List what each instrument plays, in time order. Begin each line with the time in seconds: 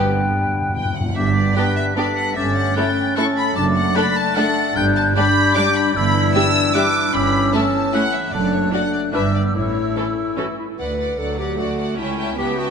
Already playing: double bass section G1, cello section G2, french horn section G3 B3, viola section B3, clarinet D4, violin section G4 D5, oboe B4, flute G5
0.23 timpani G2
0.30 timpani G2
0.38 timpani G2
0.46 timpani G2
0.54 timpani G2
0.61 timpani G2
0.69 timpani G2
0.75 timpani G2, violin section G5
0.85 timpani G2
0.93 timpani G2, violin section F#5
1.01 timpani G2
1.09 timpani G2
1.16 double bass section G1, cello section G2, french horn section G3 B3, clarinet D4, oboe G4, violin section E5, flute B6
1.36 violin section D5
1.56 french horn section G3 B3, viola section B3 D4, clarinet D4, violin section G4 D5 G5, oboe B4, flute B6
1.76 violin section E5
1.96 french horn section G3 B3, viola section B3 D4, clarinet D4, violin section G4 D5, oboe A4, flute B6
2.17 violin section F#5
2.36 double bass section G1, cello section G2, french horn section A3 C#4, clarinet C#4, oboe G4, violin section E5, flute A6
2.56 violin section F#5
2.76 french horn section A3 C#4, viola section A3 E4, clarinet C#4, violin section A4 C#5 G5, oboe B4, flute A6
3.16 french horn section A3 C#4, viola section A3 E4, clarinet C#4, oboe A4, violin section A4 C#5 C#6, flute A6
3.36 violin section B5
3.56 double bass section F#1, cello section F#2, french horn section A3 D4, clarinet D4, oboe D5, violin section A5, flute A6
3.76 violin section F#5
3.96 viola section A3 D4, violin section A4 D5 B5, oboe B4
4.16 violin section A5
4.35 french horn section A3 D4, viola section A3 D4, clarinet D4, violin section A4 D5 F#5, oboe A4, flute A6
4.76 double bass section G1, cello section G2, french horn section G3 D4, clarinet D4, oboe B4, violin section G5, flute G6
4.96 violin section A5
5.16 french horn section G3 D4, viola section G3 D4, clarinet D4, oboe G4, violin section G4 D5 B5, flute G6
5.55 french horn section G3 D4, viola section G3 D4, clarinet D4, violin section G4 D5 D6, flute G6
5.75 violin section B5
5.94 double bass section G1, cello section G2, french horn section E3 D4, clarinet D4, oboe E4, violin section B5, flute E6
6.34 viola section G3 D4, clarinet D4, violin section G4 E5 E6, flute E6
6.74 viola section G3 D4, clarinet D4, violin section G4 E5 D6, oboe B4, flute E6
7.14 double bass section G1, cello section G2, clarinet C#4, french horn section C#4, oboe G4, violin section B5, flute E6
7.54 viola section A3 C#4, clarinet C#4, violin section E4 E5 A5, oboe A4, flute E6
7.94 viola section A3 C#4, violin section E4 E5 F#5, oboe B4
8.13 violin section E5
8.33 double bass section F#1, cello section F#2, french horn section A3 D4, clarinet D4, oboe A4, violin section D5, flute F#6
8.52 violin section C#5
8.73 viola section A3 D4, french horn section A3 D4, clarinet D4, violin section F#4 D5 F#5, flute F#6
8.93 violin section D5
9.13 double bass section G1, cello section G2, viola section E3 D4, french horn section B3 D4, clarinet D4, violin section E4 B4 E5, oboe G4, flute E6
9.35 violin section D5
9.54 double bass section A1, cello section A2, french horn section A3 E4, clarinet E4, oboe E4, violin section C#5, flute E6
9.96 viola section E3 C#4, violin section E4 A4
10.37 viola section E3 C#4, violin section E4 A4, clarinet F#4
10.58 clarinet E4
10.78 double bass section D2, cello section D2, clarinet B4, violin section D5 F#5
10.99 violin section D5 F#5
11.18 double bass section D2, cello section D2, viola section F#3, clarinet A4, violin section D5 F#5
11.39 clarinet G4, violin section D5 F#5
11.59 double bass section D2, cello section D2, viola section A3, clarinet F#4, violin section D5 F#5
11.79 violin section D5 F#5
11.98 cello section C#2, double bass section C#2, viola section C#4, clarinet E4, violin section E5 G5 A5
12.18 violin section E5 G5 A5
12.38 double bass section C#2, cello section C#2, viola section B3, clarinet G4, violin section E5 G5 A5
12.58 clarinet F#4, violin section E5 G5 A5